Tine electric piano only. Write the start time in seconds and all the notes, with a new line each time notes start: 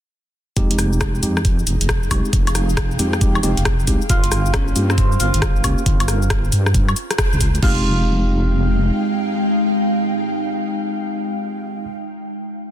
0.57 G#3 C4 D#4 G4
1.23 G#3 C4 D#4 G4
2.11 G#3 C4 D#4 G4
2.99 G#3 C4 D#4 G4
3.21 G#3 C4 D#4 G4
3.43 G#3 C4 D#4 G4
3.87 G#3 C4 D#4 G4
4.76 A#3 C#4 F4 G4
5.64 A#3 C#4 F4 G4
7.63 G#3 C4 D#4 G4